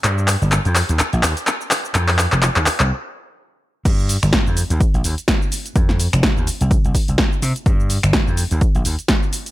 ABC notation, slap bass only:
X:1
M:4/4
L:1/16
Q:"Swing 16ths" 1/4=126
K:Eblyd
V:1 name="Slap bass" clef=bass
G,,2 z G,,, z F,, z E,, z B,,, E,, z4 z | F,,2 z F,,, z E,, z C,, z8 | G,,2 z G,,, z F,, z E,, z B,,, E,, z4 z | F,,2 z F,,, z E,, z C,, z C,, z C,, z2 C, z |
G,,2 z G,,, z F,, z E,, z B,,, E,, z4 z |]